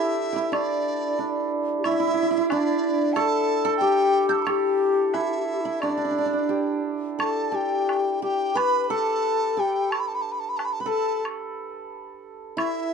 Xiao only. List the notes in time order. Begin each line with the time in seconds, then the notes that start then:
Already playing: E4
0.47 E4
0.55 D4
1.78 G4
1.84 E4
2.50 D4
3.17 A4
3.82 G4
4.48 G4
5.15 E4
5.23 G4
5.29 E4
5.38 G4
5.46 E4
5.53 G4
5.61 E4
5.83 D4
7.21 A4
7.54 G4
8.23 G4
8.55 B4
8.90 A4
9.59 G4
10.87 A4
12.58 E4